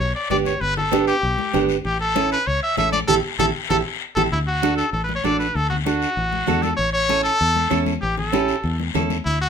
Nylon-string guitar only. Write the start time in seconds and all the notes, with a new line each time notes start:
0.30 B3 D4 G4
0.91 B3 D4 G4
1.53 B3 D4 G4
2.15 C#4 E4 A4
2.77 C#4 E4 A4
3.08 E4 G4 A4
3.40 E4 G4 A4
3.70 E4 G4 A4
4.17 E4 G4 A4
4.62 D4 F#4 A4
5.24 D4 F#4 A4
5.86 D4 F#4 A4
6.47 D4 F#4 A4
7.09 C#4 E4 A4
7.70 C#4 E4 A4
8.32 C#4 E4 G4
8.94 C#4 E4 A4